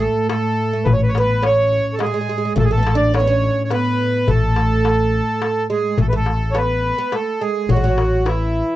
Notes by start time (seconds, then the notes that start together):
Already playing: A2
0.00 A3 A4, darbuka ka
0.29 A3 A4, darbuka tek
0.73 A3
0.84 A1 B4, darbuka dum
0.93 C#5
1.03 B4
1.08 C#5
1.15 B3, darbuka tek
1.19 B4
1.42 C#4 C#5, darbuka tek
1.72 darbuka ka
1.93 A4
1.99 G#3 G#4, darbuka tek
2.06 G#3
2.14 G#3
2.21 G#3
2.29 G#3
2.38 G#3
2.45 G#3
2.56 A1 A2 A3 A4, darbuka dum
2.64 G#4
2.71 A3 A4
2.77 B3
2.83 A3, darbuka tek
2.95 D4 D5
3.14 C#4 C#5, darbuka tek
3.20 B3
3.27 C#4
3.43 darbuka ka
3.64 C#5
3.70 B3 B4, darbuka tek
4.28 A1 A3 A4, darbuka dum
4.56 darbuka tek
4.85 darbuka tek
5.13 darbuka ka
5.42 darbuka tek
5.70 G#3 G#4
5.98 A1 A3 A4, darbuka dum
6.09 A3 B4
6.16 A4
6.26 darbuka tek
6.51 B3 C#5, darbuka tek
6.58 B4
6.98 B3
7.12 A3 A4, darbuka tek
7.41 G#3 G#4
7.69 A1 F#3 F#4, darbuka dum
7.76 G#3
7.84 F#3
7.98 darbuka tek
8.26 E3 E4, darbuka tek